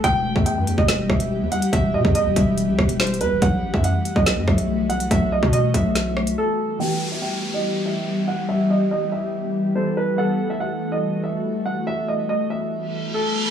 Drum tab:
HH |x-----------x-----x-----x--------x--------x--x--|x-----------x-----x-----x--------x--x-x-x-x-----|x-----------x-----x-----x--------x--------x--x--|x-----------x-----x-----x--------x--------------|
SD |------------------------o-----r-----------------|------------------------------r-----o-----------|------------------------o-----r-----------------|---------r--------------o-----r-----------------|
BD |o--------o-----------o--------o-----------------|o--------o--------o-----------o-----------------|o--------o-----------o--------o-----------------|o--------o--------o-----------------------------|

HH |------------------------------------------------|------------------------------------------------|------------------------------------------------|------------------------------------------------|
SD |------------------------------------------------|------------------------------------------------|------------------------------------------------|------------------------------------------------|
BD |------------------------------------------------|------------------------------------------------|------------------------------------------------|------------------------------------------------|